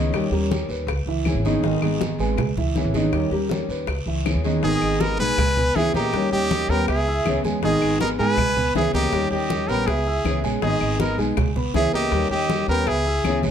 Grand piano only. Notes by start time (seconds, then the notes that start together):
Already playing: D#3 D#4 D#5
0.32 G3 G4 A#4
0.71 B4
1.07 E3 E4 E5
1.45 D#3 D#4 D#5
1.64 D#3 D#4 D#5
1.82 D#3 D#4 D#5
2.20 G#3 G#4 B4
2.57 E3 E4 E5
2.76 E3 E4 E5
2.95 D#3 D#4 D#5
3.32 G3 G4 A#4
3.70 B4
4.07 E3 E4 E5
4.45 D#3 D#4 D#5
4.63 D#3 D#4 D#5
5.01 B3 B4 B5
5.20 G#3 G#4 G#5
5.58 B3 B4 B5
5.77 E3 E4 E5
5.95 A#3 A#4 A#5
6.32 G3 G4 G5
6.70 B3 B4 B5
7.07 E4 E5 E6
7.45 G#3 G#4 G#5
7.63 D#3 D#4 D#5
8.01 B3 B4 B5
8.19 G#3 G#4 G#5
8.56 B3 B4 B5
8.75 E3 E4 E5
8.94 A#3 A#4 A#5
9.32 G3 G4 G5
9.70 B3 B4 B5
10.07 E4 E5 E6
10.44 G#3 G#4 G#5
10.62 D#3 D#4 D#5
11.00 B3 B4 B5
11.18 G#3 G#4 G#5
11.56 B3 B4 B5
11.75 E3 E4 E5
11.93 A#3 A#4 A#5
12.32 G3 G4 G5
12.69 B3 B4 B5
13.06 E4 E5 E6
13.44 G#3 G#4 G#5